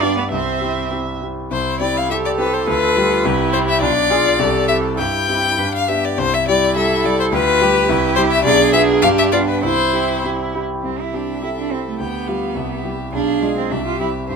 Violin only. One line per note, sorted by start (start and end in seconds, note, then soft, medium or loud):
0.02 0.16 D5 medium
0.17 0.23 B4 medium
0.32 0.91 C5 medium
1.51 1.79 C5 loud
1.80 1.98 D5 loud
1.97 2.10 F5 loud
2.11 2.17 E5 medium
2.25 2.31 D5 medium
2.39 2.55 B4 medium
2.54 2.68 C5 medium
2.68 3.52 B4 loud
3.53 3.59 C5 loud
3.69 3.81 E5 loud
3.82 4.67 D5 loud
4.68 4.76 E5 medium
4.98 5.72 G5 loud
5.75 5.90 F5 medium
5.88 6.06 E5 medium
6.05 6.20 D5 medium
6.18 6.35 C5 loud
6.34 6.47 E5 loud
6.48 6.76 D5 loud
6.76 7.07 E5 loud
7.05 7.19 D5 loud
7.20 7.25 C5 loud
7.32 8.15 B4 loud
8.16 8.21 C5 loud
8.31 8.44 E5 loud
8.44 8.72 D5 loud
8.73 8.81 E5 loud
9.02 9.08 F5 loud
9.18 9.24 E5 loud
9.32 9.38 D5 loud
9.49 9.62 B4 medium
9.63 10.23 C5 loud
10.85 11.96 E5 soft
11.99 12.29 G5 medium
12.27 12.58 F5 medium
12.56 13.12 E5 medium
13.13 13.67 F5 medium
13.71 14.29 E5 medium
14.30 14.36 E5 medium